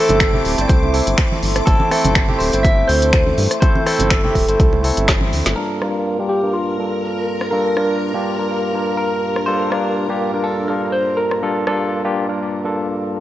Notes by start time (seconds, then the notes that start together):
Already playing: A3 C4 E4 A4 E5 A5 C6 D6
0.09 G1, closed hi-hat, high conga, low conga
0.20 finger snap, kick, closed hi-hat
0.33 A3 C4 E4 G4, low conga
0.45 D1, open hi-hat
0.58 G1 A3 C4 E4 C5 D5, closed hi-hat
0.68 C2 C5, kick, closed hi-hat
0.83 low conga
0.93 A3 C4 E4 A4, open hi-hat
1.07 G1, closed hi-hat
1.18 finger snap, kick, closed hi-hat
1.32 high conga
1.43 G1, open hi-hat
1.56 cross-stick, closed hi-hat
1.65 G1 A3 C4 E4 A4, kick, closed hi-hat
1.80 high conga
1.91 A3 C4 E4 A4, cross-stick, open hi-hat
2.05 G1, closed hi-hat, high conga, low conga
2.15 finger snap, kick, closed hi-hat
2.28 A3 C4 E4 G4, low conga
2.39 D1 C5, open hi-hat
2.53 G1 A3 C4 E4 C5, closed hi-hat
2.63 E5, kick, closed hi-hat
2.87 D2 A3 C4 E4 A4 C5, open hi-hat
3.02 closed hi-hat
3.13 finger snap, kick, closed hi-hat
3.27 high conga
3.38 G2, open hi-hat
3.51 cross-stick, closed hi-hat
3.61 A3 C4 E4 A4 C5, kick, closed hi-hat
3.75 high conga
3.86 A3 C4 E4 A4, cross-stick, open hi-hat
3.99 G1, closed hi-hat, high conga, low conga
4.09 A4, finger snap, kick, closed hi-hat
4.24 A3 C4 E4 G4, low conga
4.35 D1, kick, open hi-hat
4.48 G1 A3 C4 E4 C5, closed hi-hat
4.60 C2, kick, closed hi-hat
4.73 low conga
4.83 A3 C4 E4 A4, open hi-hat
4.97 G1, closed hi-hat
5.08 finger snap, kick, snare, closed hi-hat
5.21 high conga
5.33 D2, open hi-hat
5.46 G1, snare, closed hi-hat
5.56 G2 A#3 D4 F4 G4 A4 A#4 F5
5.70 F5
5.81 G2 A#3 D4 F4 A#4, cross-stick
6.03 G4
6.19 G2 A#3 D4 F4 G4
6.29 G4
6.43 G2 A#3 D4 F4 A#4
6.53 F4
6.78 G2 A#3 D4 F4 A4
7.41 cross-stick
7.51 G2 A#3 D4 F4 A4 A#4
7.76 G2 A#3 D4 F4 A#4, cross-stick
8.14 G2 A#3 D4 F4 G4
8.38 G2 A#3 D4 F4 A#4
8.73 G2 A#3 D4 F4 A#4
8.97 A#4
9.36 cross-stick
9.46 G2 A#3 D4 F4 A4 C5
9.70 G2 A#3 D4 F4 A#4, cross-stick
10.09 G2 A#3 D4 F4 G4
10.33 G2 A#3 D4 F4 A#4
10.44 A4
10.68 G2 A#3 D4 F4 A4 A#4
10.92 C5
11.17 A#4
11.31 cross-stick
11.42 G2 A#3 D4 F4 A4
11.67 G2 A#3 D4 F4 A4, cross-stick
12.04 G2 A#3 D4 F4 G4
12.29 G2 A#3 D4 F4 A#4
12.64 G2 A#3 D4 F4 A4